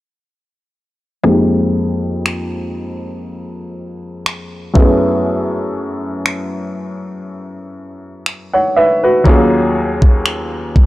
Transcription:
1.24 grand piano F2 G#3 A#3 C4
1.28 grand piano D#4 G4
2.26 finger snap
4.26 finger snap
4.74 grand piano F#2 A3 B3 C#4, kick
4.78 grand piano E4 G#4
6.26 finger snap
8.26 finger snap
8.53 grand piano C#5 F#5
8.76 grand piano B4 E5
9.04 grand piano F#4 B4
9.24 grand piano D#2 F#3 A#3 C#4, kick
9.28 grand piano F4 G#4
10.02 kick
10.26 finger snap
10.76 kick

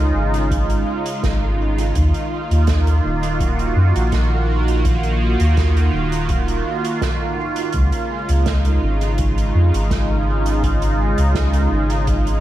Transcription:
Already playing: sub bass C#2, analog synth pad C#3 G#3 D#4 F4
0.15 sub bass G#1
0.34 closed hi-hat
0.51 kick, closed hi-hat
0.70 closed hi-hat
1.06 closed hi-hat
1.23 sub bass G#1, kick, snare, closed hi-hat
1.78 closed hi-hat
1.95 sub bass D#2, analog synth pad D#3, kick, closed hi-hat
2.14 closed hi-hat
2.38 analog synth pad A#3
2.51 sub bass D#2, closed hi-hat
2.67 kick, snare, closed hi-hat
2.87 closed hi-hat
3.04 sub bass D#1
3.23 analog synth pad F#4, closed hi-hat
3.40 kick, closed hi-hat
3.59 closed hi-hat
3.76 sub bass F#2
3.95 sub bass A#1, closed hi-hat
4.12 kick, snare, closed hi-hat
4.68 closed hi-hat
4.85 kick, closed hi-hat
5.03 closed hi-hat
5.40 sub bass D#2, closed hi-hat
5.57 kick, snare, closed hi-hat
5.77 closed hi-hat
5.93 sub bass D#1
6.12 closed hi-hat
6.29 kick, closed hi-hat
6.48 closed hi-hat
6.85 closed hi-hat
7.01 kick, snare, closed hi-hat
7.56 closed hi-hat
7.73 sub bass C#2, analog synth pad C#3, kick, closed hi-hat
7.92 closed hi-hat
8.08 analog synth pad G#3
8.29 sub bass C#2, analog synth pad D#4, closed hi-hat
8.46 kick, snare, closed hi-hat
8.65 closed hi-hat
8.82 sub bass G#1
9.01 closed hi-hat
9.18 kick, closed hi-hat
9.38 closed hi-hat
9.55 sub bass F2
9.74 sub bass G#1, closed hi-hat
9.91 kick, snare, closed hi-hat
10.46 closed hi-hat
10.63 kick, closed hi-hat
10.82 closed hi-hat
11.18 sub bass C#2, closed hi-hat
11.35 kick, snare, closed hi-hat
11.54 closed hi-hat
11.71 sub bass G#1
11.90 closed hi-hat
12.07 sub bass G#1, kick, closed hi-hat
12.27 closed hi-hat

